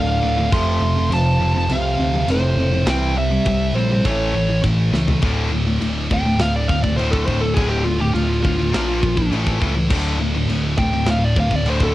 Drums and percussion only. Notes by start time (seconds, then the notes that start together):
0.52 kick, crash
1.12 crash
1.69 crash
2.28 crash
2.87 snare, crash
3.45 kick, crash
4.05 kick, crash
4.64 kick, crash
4.94 snare
5.08 floor tom
5.22 kick, china
5.82 china
6.11 kick
6.40 snare, china
6.69 kick
6.84 kick
6.99 china
7.13 kick
7.28 kick
7.57 kick, china
8.16 china
8.45 kick
8.74 snare, china
9.03 kick
9.17 kick
9.33 china
9.47 kick
9.62 kick
9.90 kick, china, crash
10.50 china
10.78 kick
11.07 snare, china
11.36 kick
11.51 kick
11.66 china
11.80 kick